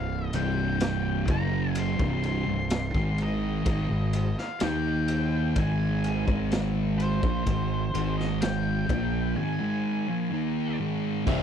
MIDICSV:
0, 0, Header, 1, 5, 480
1, 0, Start_track
1, 0, Tempo, 950872
1, 1849, Time_signature, 4, 2, 24, 8
1, 5768, End_track
2, 0, Start_track
2, 0, Title_t, "Lead electric guitar"
2, 0, Program_c, 0, 29
2, 0, Note_on_c, 0, 77, 84
2, 177, Note_off_c, 0, 77, 0
2, 179, Note_on_c, 0, 79, 85
2, 659, Note_on_c, 0, 82, 92
2, 668, Note_off_c, 0, 79, 0
2, 901, Note_off_c, 0, 82, 0
2, 907, Note_on_c, 0, 84, 99
2, 1122, Note_off_c, 0, 84, 0
2, 1142, Note_on_c, 0, 84, 104
2, 1629, Note_off_c, 0, 84, 0
2, 1631, Note_on_c, 0, 75, 89
2, 2216, Note_on_c, 0, 77, 84
2, 2237, Note_off_c, 0, 75, 0
2, 2336, Note_off_c, 0, 77, 0
2, 2341, Note_on_c, 0, 79, 83
2, 2823, Note_off_c, 0, 79, 0
2, 2825, Note_on_c, 0, 80, 93
2, 3277, Note_off_c, 0, 80, 0
2, 3525, Note_on_c, 0, 72, 84
2, 4107, Note_off_c, 0, 72, 0
2, 4128, Note_on_c, 0, 75, 87
2, 4246, Note_on_c, 0, 79, 88
2, 4252, Note_off_c, 0, 75, 0
2, 4707, Note_off_c, 0, 79, 0
2, 4728, Note_on_c, 0, 80, 94
2, 5428, Note_off_c, 0, 80, 0
2, 5768, End_track
3, 0, Start_track
3, 0, Title_t, "Distorted electric guitar"
3, 0, Program_c, 1, 30
3, 0, Note_on_c, 1, 36, 69
3, 0, Note_on_c, 1, 43, 80
3, 121, Note_off_c, 1, 36, 0
3, 122, Note_off_c, 1, 43, 0
3, 172, Note_on_c, 1, 36, 105
3, 177, Note_on_c, 1, 43, 97
3, 177, Note_on_c, 1, 48, 115
3, 644, Note_off_c, 1, 36, 0
3, 646, Note_off_c, 1, 43, 0
3, 646, Note_off_c, 1, 48, 0
3, 648, Note_on_c, 1, 42, 90
3, 653, Note_on_c, 1, 49, 99
3, 655, Note_on_c, 1, 54, 89
3, 1000, Note_off_c, 1, 42, 0
3, 1002, Note_on_c, 1, 36, 91
3, 1003, Note_off_c, 1, 49, 0
3, 1005, Note_off_c, 1, 54, 0
3, 1005, Note_on_c, 1, 43, 82
3, 1011, Note_on_c, 1, 48, 87
3, 1238, Note_off_c, 1, 36, 0
3, 1240, Note_off_c, 1, 43, 0
3, 1243, Note_off_c, 1, 48, 0
3, 1248, Note_on_c, 1, 36, 56
3, 1250, Note_on_c, 1, 43, 64
3, 1440, Note_off_c, 1, 36, 0
3, 1441, Note_off_c, 1, 43, 0
3, 1482, Note_on_c, 1, 44, 89
3, 1489, Note_on_c, 1, 51, 90
3, 1494, Note_on_c, 1, 56, 95
3, 1838, Note_off_c, 1, 44, 0
3, 1842, Note_off_c, 1, 51, 0
3, 1844, Note_off_c, 1, 56, 0
3, 1846, Note_on_c, 1, 44, 82
3, 1850, Note_on_c, 1, 51, 112
3, 1960, Note_off_c, 1, 44, 0
3, 1962, Note_off_c, 1, 51, 0
3, 1968, Note_on_c, 1, 44, 64
3, 1968, Note_on_c, 1, 51, 62
3, 2160, Note_off_c, 1, 44, 0
3, 2160, Note_off_c, 1, 51, 0
3, 2328, Note_on_c, 1, 51, 99
3, 2330, Note_on_c, 1, 58, 108
3, 2334, Note_on_c, 1, 63, 108
3, 2801, Note_off_c, 1, 51, 0
3, 2802, Note_off_c, 1, 58, 0
3, 2804, Note_off_c, 1, 63, 0
3, 2808, Note_on_c, 1, 44, 92
3, 2813, Note_on_c, 1, 51, 87
3, 2817, Note_on_c, 1, 56, 95
3, 3161, Note_off_c, 1, 44, 0
3, 3164, Note_off_c, 1, 51, 0
3, 3166, Note_off_c, 1, 56, 0
3, 3171, Note_on_c, 1, 44, 93
3, 3179, Note_on_c, 1, 51, 91
3, 3180, Note_on_c, 1, 56, 98
3, 3643, Note_off_c, 1, 44, 0
3, 3647, Note_off_c, 1, 51, 0
3, 3647, Note_off_c, 1, 56, 0
3, 3651, Note_on_c, 1, 46, 88
3, 3657, Note_on_c, 1, 53, 100
3, 3763, Note_off_c, 1, 46, 0
3, 3766, Note_off_c, 1, 53, 0
3, 3770, Note_on_c, 1, 51, 70
3, 3772, Note_on_c, 1, 44, 60
3, 3961, Note_off_c, 1, 51, 0
3, 3962, Note_off_c, 1, 44, 0
3, 4008, Note_on_c, 1, 44, 91
3, 4014, Note_on_c, 1, 51, 114
3, 4016, Note_on_c, 1, 56, 109
3, 4481, Note_off_c, 1, 44, 0
3, 4484, Note_off_c, 1, 51, 0
3, 4485, Note_off_c, 1, 56, 0
3, 4489, Note_on_c, 1, 46, 83
3, 4496, Note_on_c, 1, 53, 86
3, 4498, Note_on_c, 1, 58, 104
3, 4722, Note_off_c, 1, 46, 0
3, 4725, Note_off_c, 1, 53, 0
3, 4726, Note_off_c, 1, 58, 0
3, 4731, Note_on_c, 1, 44, 89
3, 4736, Note_on_c, 1, 51, 95
3, 4843, Note_off_c, 1, 44, 0
3, 4845, Note_off_c, 1, 51, 0
3, 4853, Note_on_c, 1, 44, 88
3, 4856, Note_on_c, 1, 51, 87
3, 4860, Note_on_c, 1, 56, 94
3, 5084, Note_off_c, 1, 44, 0
3, 5085, Note_off_c, 1, 51, 0
3, 5087, Note_off_c, 1, 56, 0
3, 5089, Note_on_c, 1, 46, 84
3, 5095, Note_on_c, 1, 53, 88
3, 5202, Note_off_c, 1, 46, 0
3, 5202, Note_off_c, 1, 53, 0
3, 5204, Note_on_c, 1, 51, 95
3, 5208, Note_on_c, 1, 63, 96
3, 5209, Note_on_c, 1, 58, 83
3, 5439, Note_off_c, 1, 51, 0
3, 5441, Note_off_c, 1, 58, 0
3, 5441, Note_off_c, 1, 63, 0
3, 5447, Note_on_c, 1, 44, 91
3, 5448, Note_on_c, 1, 51, 90
3, 5452, Note_on_c, 1, 56, 103
3, 5680, Note_off_c, 1, 44, 0
3, 5681, Note_off_c, 1, 51, 0
3, 5682, Note_on_c, 1, 36, 95
3, 5683, Note_off_c, 1, 56, 0
3, 5687, Note_on_c, 1, 43, 106
3, 5691, Note_on_c, 1, 48, 112
3, 5768, Note_off_c, 1, 36, 0
3, 5768, Note_off_c, 1, 43, 0
3, 5768, Note_off_c, 1, 48, 0
3, 5768, End_track
4, 0, Start_track
4, 0, Title_t, "Fingered electric bass"
4, 0, Program_c, 2, 33
4, 0, Note_on_c, 2, 24, 84
4, 151, Note_off_c, 2, 24, 0
4, 171, Note_on_c, 2, 24, 102
4, 630, Note_off_c, 2, 24, 0
4, 649, Note_on_c, 2, 30, 110
4, 989, Note_off_c, 2, 30, 0
4, 1008, Note_on_c, 2, 24, 105
4, 1232, Note_off_c, 2, 24, 0
4, 1251, Note_on_c, 2, 24, 76
4, 1473, Note_off_c, 2, 24, 0
4, 1484, Note_on_c, 2, 32, 104
4, 1826, Note_off_c, 2, 32, 0
4, 1847, Note_on_c, 2, 32, 93
4, 1960, Note_off_c, 2, 32, 0
4, 1971, Note_on_c, 2, 32, 82
4, 2193, Note_off_c, 2, 32, 0
4, 2330, Note_on_c, 2, 39, 93
4, 2789, Note_off_c, 2, 39, 0
4, 2809, Note_on_c, 2, 32, 88
4, 3149, Note_off_c, 2, 32, 0
4, 3171, Note_on_c, 2, 32, 87
4, 3630, Note_off_c, 2, 32, 0
4, 3652, Note_on_c, 2, 34, 86
4, 3762, Note_off_c, 2, 34, 0
4, 3771, Note_on_c, 2, 32, 80
4, 3993, Note_off_c, 2, 32, 0
4, 4012, Note_on_c, 2, 32, 91
4, 4470, Note_off_c, 2, 32, 0
4, 4489, Note_on_c, 2, 34, 97
4, 4712, Note_off_c, 2, 34, 0
4, 5691, Note_on_c, 2, 24, 93
4, 5768, Note_off_c, 2, 24, 0
4, 5768, End_track
5, 0, Start_track
5, 0, Title_t, "Drums"
5, 167, Note_on_c, 9, 51, 72
5, 217, Note_off_c, 9, 51, 0
5, 406, Note_on_c, 9, 51, 89
5, 412, Note_on_c, 9, 38, 108
5, 456, Note_off_c, 9, 51, 0
5, 462, Note_off_c, 9, 38, 0
5, 645, Note_on_c, 9, 51, 73
5, 646, Note_on_c, 9, 36, 112
5, 695, Note_off_c, 9, 51, 0
5, 697, Note_off_c, 9, 36, 0
5, 884, Note_on_c, 9, 51, 95
5, 935, Note_off_c, 9, 51, 0
5, 1007, Note_on_c, 9, 36, 111
5, 1058, Note_off_c, 9, 36, 0
5, 1128, Note_on_c, 9, 51, 73
5, 1178, Note_off_c, 9, 51, 0
5, 1364, Note_on_c, 9, 51, 90
5, 1370, Note_on_c, 9, 38, 115
5, 1415, Note_off_c, 9, 51, 0
5, 1421, Note_off_c, 9, 38, 0
5, 1487, Note_on_c, 9, 36, 107
5, 1537, Note_off_c, 9, 36, 0
5, 1606, Note_on_c, 9, 51, 64
5, 1656, Note_off_c, 9, 51, 0
5, 1847, Note_on_c, 9, 36, 104
5, 1847, Note_on_c, 9, 51, 88
5, 1897, Note_off_c, 9, 36, 0
5, 1897, Note_off_c, 9, 51, 0
5, 2085, Note_on_c, 9, 51, 76
5, 2136, Note_off_c, 9, 51, 0
5, 2212, Note_on_c, 9, 38, 34
5, 2262, Note_off_c, 9, 38, 0
5, 2322, Note_on_c, 9, 51, 92
5, 2328, Note_on_c, 9, 38, 104
5, 2373, Note_off_c, 9, 51, 0
5, 2379, Note_off_c, 9, 38, 0
5, 2565, Note_on_c, 9, 51, 75
5, 2615, Note_off_c, 9, 51, 0
5, 2806, Note_on_c, 9, 51, 90
5, 2808, Note_on_c, 9, 36, 101
5, 2856, Note_off_c, 9, 51, 0
5, 2858, Note_off_c, 9, 36, 0
5, 3049, Note_on_c, 9, 51, 64
5, 3099, Note_off_c, 9, 51, 0
5, 3168, Note_on_c, 9, 36, 105
5, 3219, Note_off_c, 9, 36, 0
5, 3289, Note_on_c, 9, 51, 83
5, 3295, Note_on_c, 9, 38, 111
5, 3339, Note_off_c, 9, 51, 0
5, 3345, Note_off_c, 9, 38, 0
5, 3532, Note_on_c, 9, 51, 64
5, 3582, Note_off_c, 9, 51, 0
5, 3650, Note_on_c, 9, 36, 120
5, 3701, Note_off_c, 9, 36, 0
5, 3768, Note_on_c, 9, 51, 86
5, 3769, Note_on_c, 9, 36, 83
5, 3819, Note_off_c, 9, 51, 0
5, 3820, Note_off_c, 9, 36, 0
5, 4012, Note_on_c, 9, 51, 70
5, 4062, Note_off_c, 9, 51, 0
5, 4138, Note_on_c, 9, 38, 35
5, 4188, Note_off_c, 9, 38, 0
5, 4249, Note_on_c, 9, 51, 84
5, 4255, Note_on_c, 9, 38, 99
5, 4299, Note_off_c, 9, 51, 0
5, 4305, Note_off_c, 9, 38, 0
5, 4490, Note_on_c, 9, 36, 109
5, 4492, Note_on_c, 9, 51, 65
5, 4540, Note_off_c, 9, 36, 0
5, 4542, Note_off_c, 9, 51, 0
5, 5689, Note_on_c, 9, 36, 110
5, 5690, Note_on_c, 9, 49, 80
5, 5739, Note_off_c, 9, 36, 0
5, 5740, Note_off_c, 9, 49, 0
5, 5768, End_track
0, 0, End_of_file